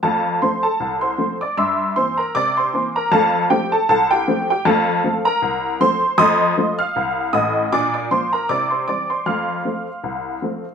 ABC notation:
X:1
M:2/4
L:1/16
Q:"Swing 16ths" 1/4=78
K:F
V:1 name="Honky-tonk piano"
[Afa]2 [cc'] [Aa]2 [cc']2 [dd'] | [ec'e']2 [cc'] [Bb] [dd'] [cc']2 [Bb] | [Afa]2 [Gg] [Aa] [Aa] [Gg]2 [Gg] | [Afa]3 [Bb]3 [cc']2 |
[_ec'_e']3 [ff']3 [ee']2 | [dd'] [dd'] [cc'] [Bb] [dd'] [cc'] [dd'] [cc'] | [fc'f']8 |]
V:2 name="Honky-tonk piano"
[F,,A,]2 [F,A,C]2 C,,2 [F,A,C]2 | G,,2 [E,B,C]2 C,2 [E,B,C]2 | [F,,A,]2 [F,A,C]2 C,,2 [F,A,C]2 | [F,,A,]2 [F,A,C]2 C,,2 [F,A,C]2 |
[F,,A,]2 [F,A,F]2 C,,2 [A,,,A,,]2 | [B,,D]2 [F,B,F]2 [C,E]2 [E,G,C]2 | [F,,A,]2 [F,A,C]2 C,,2 [F,A,C]2 |]